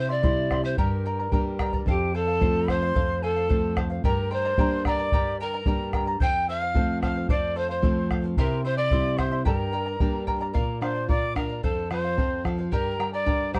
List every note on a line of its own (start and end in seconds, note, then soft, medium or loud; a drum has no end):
0.00 0.75 C3 medium
0.09 0.22 E4 soft
0.09 0.61 D5 loud
0.09 0.22 E5 soft
0.09 0.23 C6 medium
0.22 0.76 G3 soft
0.22 0.76 C4 soft
0.22 0.50 E4 medium
0.22 0.77 E4 medium
0.22 0.49 C5 medium
0.22 0.50 E5 medium
0.22 0.51 C6 medium
0.22 bombo low medium
0.51 0.65 E4 medium
0.51 0.64 C5 medium
0.51 0.63 E5 medium
0.51 0.62 C6 medium
0.51 bombo rim soft
0.51 bombo low medium
0.64 0.78 E4 soft
0.64 0.79 C5 medium
0.64 0.78 E5 soft
0.64 0.78 C6 medium
0.78 1.84 G2 medium
0.78 1.05 G4 medium
0.78 1.59 A#4 medium
0.78 1.05 A#4 medium
0.78 1.05 D5 medium
0.78 1.04 G5 medium
0.78 1.05 A#5 medium
0.78 bombo low medium
1.06 1.19 A#4 medium
1.06 1.19 D5 medium
1.06 1.19 G5 medium
1.06 1.18 A#5 medium
1.19 1.31 A#4 soft
1.19 1.32 D5 soft
1.19 1.32 A#5 medium
1.32 1.85 G3 soft
1.32 1.85 A#3 soft
1.32 1.85 D4 medium
1.32 1.59 A#4 medium
1.32 1.60 D5 medium
1.32 1.58 G5 medium
1.32 1.60 A#5 medium
1.32 bombo low medium
1.59 1.73 A#4 medium
1.59 1.72 D5 medium
1.59 1.73 G5 medium
1.59 1.72 A#5 medium
1.59 bombo rim soft
1.59 bombo low medium
1.73 1.87 A#4 soft
1.73 1.87 D5 soft
1.73 1.87 A#5 medium
1.73 bombo low medium
1.86 2.92 F2 medium
1.86 2.16 G4 medium
1.86 2.13 A4 medium
1.86 2.14 C5 medium
1.86 2.15 F5 medium
1.86 2.17 G5 medium
1.86 bombo low medium
2.14 2.28 A4 medium
2.14 2.71 A4 loud
2.14 2.27 C5 medium
2.14 2.26 F5 medium
2.14 2.71 A5 medium
2.27 2.40 C5 soft
2.27 2.41 F5 medium
2.41 2.94 F3 soft
2.41 2.94 A3 soft
2.41 2.94 C4 medium
2.41 2.68 A4 medium
2.41 2.68 C5 medium
2.41 2.68 F5 medium
2.41 bombo low medium
2.68 2.82 A4 medium
2.68 3.24 C5 medium
2.68 2.82 C5 medium
2.68 2.81 F5 medium
2.68 3.24 C6 medium
2.68 bombo rim soft
2.68 bombo low medium
2.82 2.95 C5 soft
2.82 2.95 F5 medium
2.95 4.01 F2 medium
2.95 3.21 A4 medium
2.95 3.22 C5 medium
2.95 3.23 F5 medium
2.95 bombo low medium
3.22 3.36 A4 medium
3.22 3.77 A4 loud
3.22 3.36 C5 medium
3.22 3.35 F5 medium
3.22 3.77 A5 medium
3.36 3.49 C5 soft
3.36 3.49 F5 medium
3.49 4.02 F3 soft
3.49 4.02 A3 soft
3.49 4.02 C4 medium
3.49 3.76 A4 medium
3.49 3.76 C5 medium
3.49 3.77 F5 medium
3.49 bombo low medium
3.77 3.90 A4 medium
3.77 3.90 C5 medium
3.77 3.89 F5 medium
3.77 bombo rim medium
3.77 bombo low medium
3.90 4.04 C5 soft
3.90 4.04 F5 medium
4.04 5.09 G2 medium
4.04 4.31 G4 medium
4.04 4.34 A#4 medium
4.04 4.30 A#4 medium
4.04 4.31 D5 medium
4.04 4.29 G5 medium
4.04 4.32 A#5 medium
4.04 4.31 A#5 medium
4.04 bombo low medium
4.31 4.45 A#4 medium
4.31 4.86 C5 loud
4.31 4.45 D5 medium
4.31 4.44 G5 medium
4.31 4.44 A#5 medium
4.31 4.85 C6 medium
4.45 4.58 A#4 soft
4.45 4.58 D5 soft
4.45 4.58 A#5 medium
4.58 5.11 G3 soft
4.58 5.11 A#3 soft
4.58 5.11 D4 medium
4.58 4.85 A#4 medium
4.58 4.85 D5 medium
4.58 4.84 G5 medium
4.58 4.86 A#5 medium
4.58 bombo low medium
4.85 4.99 A#4 medium
4.85 4.99 D5 medium
4.85 5.36 D5 medium
4.85 4.99 G5 medium
4.85 4.98 A#5 medium
4.85 4.91 E6 medium
4.85 bombo rim medium
4.85 bombo low medium
4.90 5.36 D6 medium
4.99 5.13 A#4 soft
4.99 5.12 D5 soft
4.99 5.12 A#5 medium
5.12 6.18 G2 medium
5.12 5.40 G4 medium
5.12 5.40 A#4 medium
5.12 5.40 D5 medium
5.12 5.39 G5 medium
5.12 5.40 A#5 medium
5.12 bombo low medium
5.40 5.54 A#4 medium
5.40 5.91 A#4 medium
5.40 5.53 D5 medium
5.40 5.53 G5 medium
5.40 5.90 A#5 medium
5.40 5.53 A#5 medium
5.54 5.66 A#4 soft
5.54 5.66 D5 soft
5.54 5.67 A#5 medium
5.66 6.19 G3 soft
5.66 6.19 A#3 soft
5.66 6.19 D4 medium
5.66 5.93 A#4 medium
5.66 5.93 D5 medium
5.66 5.92 G5 medium
5.66 5.94 A#5 medium
5.66 bombo low medium
5.93 6.07 A#4 medium
5.93 6.07 D5 medium
5.93 6.07 G5 medium
5.93 6.06 A#5 medium
5.93 bombo rim soft
5.93 bombo low medium
6.07 6.20 A#4 soft
6.07 6.21 D5 soft
6.07 6.21 A#5 medium
6.20 7.26 F2 medium
6.20 6.47 A4 medium
6.20 6.48 C5 medium
6.20 6.48 F5 medium
6.20 6.46 G5 loud
6.20 6.46 G6 medium
6.20 bombo low medium
6.48 6.62 A4 soft
6.48 6.62 C5 medium
6.48 6.99 F5 loud
6.48 6.60 F5 medium
6.48 6.98 F6 medium
6.62 6.75 C5 soft
6.62 6.75 F5 medium
6.74 7.27 F3 soft
6.74 7.28 A3 soft
6.74 7.28 C4 medium
6.74 7.01 A4 medium
6.74 7.02 C5 medium
6.74 7.02 F5 medium
6.74 bombo low medium
7.02 7.16 A4 medium
7.02 7.16 C5 medium
7.02 7.28 F5 medium
7.02 7.14 F5 medium
7.02 7.27 F6 medium
7.02 bombo rim soft
7.02 bombo low medium
7.15 7.29 C5 soft
7.15 7.29 F5 medium
7.29 8.34 F2 medium
7.29 7.54 A4 medium
7.29 7.55 C5 medium
7.29 7.59 D5 medium
7.29 7.56 F5 medium
7.29 7.58 D6 medium
7.29 bombo low medium
7.56 7.70 A4 medium
7.56 7.69 C5 medium
7.56 7.70 C5 medium
7.56 7.68 F5 medium
7.56 7.69 C6 medium
7.69 8.08 C5 medium
7.69 7.83 C5 soft
7.69 7.83 F5 soft
7.69 8.08 C6 medium
7.82 8.36 F3 soft
7.82 8.36 A3 soft
7.82 8.36 C4 medium
7.82 8.10 A4 medium
7.82 8.10 C5 medium
7.82 8.11 F5 medium
7.82 bombo low medium
8.11 8.24 A4 medium
8.11 8.24 C5 medium
8.11 8.23 F5 medium
8.11 bombo rim soft
8.11 bombo low medium
8.24 8.37 C5 soft
8.24 8.38 F5 medium
8.37 9.43 C3 medium
8.37 8.64 E4 medium
8.37 8.65 G4 medium
8.37 8.63 A#4 medium
8.37 8.63 C5 medium
8.37 8.65 E5 medium
8.37 8.63 A#5 medium
8.37 8.65 C6 medium
8.37 bombo low medium
8.64 8.78 E4 medium
8.64 8.78 C5 medium
8.64 8.76 C5 loud
8.64 8.77 E5 medium
8.64 8.76 C6 medium
8.77 8.91 E4 soft
8.77 9.19 D5 loud
8.77 8.91 E5 soft
8.77 8.91 C6 medium
8.77 9.19 D6 medium
8.91 9.45 G3 soft
8.91 9.45 C4 soft
8.91 9.17 E4 medium
8.91 9.45 E4 medium
8.91 9.17 C5 medium
8.91 9.18 E5 medium
8.91 9.18 C6 medium
8.91 bombo low medium
9.17 9.32 E4 medium
9.17 9.32 C5 medium
9.17 9.44 C5 medium
9.17 9.31 E5 medium
9.17 9.45 C6 medium
9.17 9.30 C6 medium
9.17 bombo rim soft
9.17 bombo low medium
9.31 9.45 E4 soft
9.31 9.46 E5 medium
9.31 9.46 C6 medium
9.45 10.52 G2 medium
9.45 9.73 G4 medium
9.45 10.23 A#4 medium
9.45 9.72 A#4 medium
9.45 9.72 D5 medium
9.45 9.71 G5 medium
9.45 10.23 A#5 medium
9.45 9.73 A#5 medium
9.45 bombo low medium
9.72 9.86 A#4 medium
9.72 9.86 D5 medium
9.72 9.86 G5 medium
9.72 9.85 A#5 medium
9.86 9.99 A#4 soft
9.86 10.00 D5 soft
9.86 10.00 A#5 medium
10.00 10.53 G3 soft
10.00 10.53 A#3 soft
10.00 10.54 D4 soft
10.00 10.26 A#4 medium
10.00 10.26 D5 medium
10.00 10.26 G5 medium
10.00 10.27 A#5 medium
10.00 bombo low medium
10.27 10.41 A#4 medium
10.27 10.40 D5 medium
10.27 10.41 G5 medium
10.27 10.40 A#5 medium
10.27 bombo low soft
10.41 10.52 A#4 soft
10.41 10.53 D5 medium
10.41 10.54 A#5 medium
10.53 11.60 A#2 medium
10.53 10.80 A#4 medium
10.53 10.79 A#4 medium
10.53 10.81 D5 medium
10.53 10.81 F5 medium
10.53 10.80 A#5 medium
10.53 bombo low medium
10.81 11.08 D4 soft
10.81 10.95 A#4 medium
10.81 11.07 C5 medium
10.81 10.95 D5 medium
10.81 10.93 F5 medium
10.81 11.07 C6 medium
10.81 bombo rim soft
10.95 11.09 D5 soft
10.95 11.09 F5 soft
11.09 11.35 F4 medium
11.09 11.34 A#4 medium
11.09 11.34 D5 loud
11.09 11.35 D5 medium
11.09 11.35 F5 medium
11.09 11.34 D6 medium
11.09 bombo low medium
11.35 11.62 D4 soft
11.35 11.61 A#4 medium
11.35 11.49 A#4 medium
11.35 11.50 D5 medium
11.35 11.48 F5 medium
11.35 11.62 A#5 medium
11.35 bombo rim soft
11.35 bombo low medium
11.49 11.63 D5 soft
11.49 11.63 F5 soft
11.63 12.69 F2 medium
11.63 11.88 A4 medium
11.63 11.89 A4 medium
11.63 11.90 C5 medium
11.63 11.90 F5 medium
11.63 11.89 A5 medium
11.63 bombo low medium
11.90 12.17 F3 medium
11.90 12.04 A4 medium
11.90 12.41 C5 medium
11.90 12.04 C5 medium
11.90 12.03 F5 medium
11.90 12.42 C6 medium
11.90 bombo rim soft
12.04 12.18 C5 soft
12.04 12.18 F5 soft
12.18 12.44 C4 medium
12.18 12.44 A4 medium
12.18 12.45 C5 medium
12.18 12.46 F5 medium
12.18 bombo low medium
12.45 12.71 F3 soft
12.45 12.59 A4 medium
12.45 12.58 C5 medium
12.45 12.57 F5 medium
12.45 bombo rim soft
12.45 bombo low soft
12.58 12.72 C5 soft
12.58 12.72 F5 soft
12.71 13.60 G2 medium
12.71 12.99 G4 medium
12.71 13.10 A#4 medium
12.71 12.99 A#4 medium
12.71 12.99 D5 medium
12.71 12.98 G5 medium
12.71 13.10 A#5 medium
12.71 13.00 A#5 medium
12.71 bombo low medium
12.99 13.26 G3 medium
12.99 13.13 A#4 medium
12.99 13.13 D5 soft
12.99 13.13 G5 medium
12.99 13.12 A#5 medium
12.99 bombo rim soft
13.13 13.25 A#4 soft
13.13 13.51 D5 loud
13.13 13.26 D5 soft
13.13 13.27 A#5 medium
13.13 13.51 D6 medium
13.26 13.53 D4 medium
13.26 13.54 A#4 medium
13.26 13.54 D5 medium
13.26 13.53 G5 medium
13.26 13.54 A#5 medium
13.26 bombo low medium
13.53 13.60 G3 soft
13.53 13.60 A#4 medium
13.53 13.60 C5 medium
13.53 13.60 D5 medium
13.53 13.60 G5 medium
13.53 13.60 A#5 medium
13.53 13.60 D6 medium
13.53 bombo rim soft
13.53 bombo low soft